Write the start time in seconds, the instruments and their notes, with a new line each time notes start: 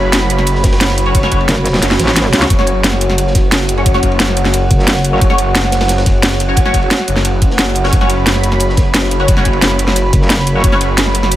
Already playing: detuned saw bass F#1, analog synth pad F#4 C#5 B5
0.13 snare, closed hi-hat, ride
0.21 snare
0.30 closed hi-hat, ride
0.38 snare, ride
0.46 closed hi-hat, ride
0.55 snare
0.63 kick, snare, closed hi-hat, ride
0.72 snare, ride
0.80 snare, closed hi-hat, ride
0.89 snare, ride
0.97 closed hi-hat, ride
1.06 synth stab C#4 F#4 C#5, ride
1.14 detuned saw bass F#1, kick, closed hi-hat, ride
1.23 synth stab C#4 F#4 C#5, snare
1.32 kick, closed hi-hat, ride
1.41 ride
1.49 wobble bass F#1, snare, closed hi-hat, ride
1.57 snare
1.66 snare, closed hi-hat, ride
1.74 snare, ride
1.78 snare, ride
1.82 detuned saw bass F#1, snare, closed hi-hat, ride
1.91 snare
1.99 wobble bass A1, snare, closed hi-hat, ride
2.08 snare
2.16 snare, closed hi-hat, ride
2.25 snare
2.33 wobble bass C#2, snare, closed hi-hat, ride
2.42 synth stab C#4 F#4 C#5, snare
2.50 detuned saw bass F#1, analog synth pad F#5, kick, closed hi-hat, ride
2.59 synth stab C#4 F#4 C#5, snare
2.67 closed hi-hat, ride
2.84 snare, closed hi-hat, ride
2.93 snare
3.01 closed hi-hat, ride
3.09 snare, ride
3.18 closed hi-hat, ride
3.27 snare
3.35 kick, snare, closed hi-hat, ride
3.52 snare, closed hi-hat, ride
3.60 snare
3.69 closed hi-hat, ride
3.77 synth stab C#4 F#4 C#5, ride
3.86 detuned saw bass F#1, kick, closed hi-hat, ride
3.94 synth stab C#4 F#4 C#5, snare
4.03 kick, closed hi-hat, ride
4.12 ride
4.19 detuned saw bass F#1, snare, closed hi-hat, ride
4.28 snare
4.37 closed hi-hat, ride
4.45 snare
4.54 closed hi-hat, ride
4.71 wobble bass F#1, kick, closed hi-hat, ride
4.79 snare
4.87 snare, closed hi-hat, ride
4.96 snare
5.05 closed hi-hat, ride
5.13 synth stab C#4 F#4 C#5
5.21 detuned saw bass F#1, kick, closed hi-hat, ride
5.30 synth stab C#4 F#4 C#5, snare
5.38 closed hi-hat, ride
5.55 snare, closed hi-hat, ride
5.64 snare
5.72 snare, closed hi-hat, ride
5.81 snare, ride
5.88 snare, closed hi-hat, ride
5.98 snare, ride
6.06 kick, snare, closed hi-hat, ride
6.23 snare, closed hi-hat, ride
6.31 snare
6.40 closed hi-hat, ride
6.49 synth stab C#4 F#4 C#5
6.56 detuned saw bass F#1, kick, closed hi-hat, ride
6.66 synth stab C#4 F#4 C#5, snare
6.74 kick, closed hi-hat, ride
6.82 ride
6.91 snare, closed hi-hat, ride
6.99 snare
7.08 detuned saw bass F#1, closed hi-hat, ride
7.16 snare
7.25 closed hi-hat, ride
7.42 kick, closed hi-hat, ride
7.50 snare
7.58 detuned saw bass F#1, snare, closed hi-hat, ride
7.75 closed hi-hat, ride
7.84 synth stab C#4 F#4 C#5, snare, ride
7.93 detuned saw bass F#1, analog synth pad B5, kick, closed hi-hat, ride
8.01 synth stab C#4 F#4 C#5, snare
8.10 closed hi-hat, ride
8.27 snare, closed hi-hat, ride
8.35 snare
8.44 closed hi-hat, ride
8.52 snare, ride
8.60 closed hi-hat, ride
8.69 snare
8.77 kick, snare, closed hi-hat, ride
8.94 snare, closed hi-hat, ride
9.02 snare
9.11 closed hi-hat, ride
9.20 synth stab C#4 F#4 C#5, ride
9.28 detuned saw bass F#1, kick, closed hi-hat, ride
9.37 synth stab C#4 F#4 C#5, snare
9.45 kick, closed hi-hat, ride
9.53 ride
9.62 detuned saw bass F#1, snare, closed hi-hat, ride
9.71 snare
9.79 closed hi-hat, ride
9.88 snare
9.96 closed hi-hat, ride
10.13 wobble bass F#1, kick, closed hi-hat, ride
10.22 snare
10.30 snare, closed hi-hat, ride
10.38 snare
10.47 closed hi-hat, ride
10.55 synth stab C#4 F#4 C#5
10.64 detuned saw bass F#1, kick, closed hi-hat, ride
10.72 synth stab C#4 F#4 C#5, snare
10.81 closed hi-hat, ride
10.98 snare, closed hi-hat, ride
11.06 snare
11.15 closed hi-hat, ride
11.23 snare, ride
11.31 closed hi-hat, ride